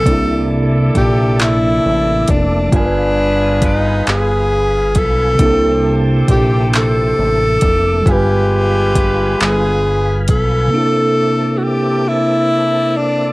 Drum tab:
HH |x-xx-x|x-xx-x|x-xx-x|x-xx-x|
CP |---x--|---x--|---x--|---x--|
BD |o-o--o|o-o--o|o-o--o|o-o--o|

HH |------|
CP |------|
BD |------|